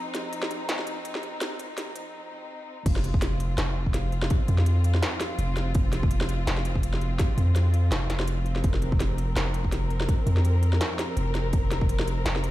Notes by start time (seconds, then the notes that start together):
Already playing: F3 C4 D#4
0.15 snare, closed hi-hat
0.33 closed hi-hat
0.43 snare
0.51 closed hi-hat
0.69 snare, closed hi-hat
0.79 snare
0.87 closed hi-hat
1.05 closed hi-hat
1.15 snare
1.23 closed hi-hat
1.41 snare, closed hi-hat
1.59 closed hi-hat
1.78 snare, closed hi-hat
1.96 closed hi-hat
2.86 F1 F3 C4 F4, kick, closed hi-hat, crash
2.96 snare
3.04 closed hi-hat
3.14 kick
3.22 snare, closed hi-hat
3.40 closed hi-hat
3.58 F1, snare, closed hi-hat
3.86 kick
3.94 snare, closed hi-hat
4.12 closed hi-hat
4.22 snare
4.30 kick, closed hi-hat
4.48 F2, closed hi-hat
4.58 snare
4.66 closed hi-hat
4.84 closed hi-hat
4.94 snare
5.02 snare, closed hi-hat
5.21 snare, closed hi-hat
5.39 F1, closed hi-hat
5.57 snare, closed hi-hat
5.75 F1, kick, closed hi-hat
5.93 snare, closed hi-hat
6.03 kick
6.11 closed hi-hat
6.21 snare
6.29 closed hi-hat
6.47 F1, snare, closed hi-hat
6.57 snare
6.65 closed hi-hat
6.75 kick
6.83 closed hi-hat
6.94 snare
7.01 closed hi-hat
7.19 kick, snare, closed hi-hat
7.38 F2, closed hi-hat
7.56 snare, closed hi-hat
7.74 closed hi-hat
7.92 F1, snare, closed hi-hat
8.10 snare, closed hi-hat
8.20 snare
8.28 closed hi-hat
8.46 closed hi-hat
8.56 snare
8.64 F1 A#4, kick, closed hi-hat
8.74 snare
8.82 closed hi-hat
8.92 kick
9.00 snare, closed hi-hat
9.18 closed hi-hat
9.36 F1, snare, closed hi-hat
9.54 closed hi-hat
9.64 kick
9.72 snare, closed hi-hat
9.90 closed hi-hat
10.01 snare
10.09 kick, closed hi-hat
10.27 F2, closed hi-hat
10.37 snare
10.45 closed hi-hat
10.63 closed hi-hat
10.73 snare
10.81 snare, closed hi-hat
10.99 snare, closed hi-hat
11.17 F1, closed hi-hat
11.35 snare, closed hi-hat
11.53 F1, kick, closed hi-hat
11.71 snare, closed hi-hat
11.81 kick
11.89 closed hi-hat
11.99 snare
12.08 closed hi-hat
12.26 F1, snare, closed hi-hat
12.36 snare
12.44 closed hi-hat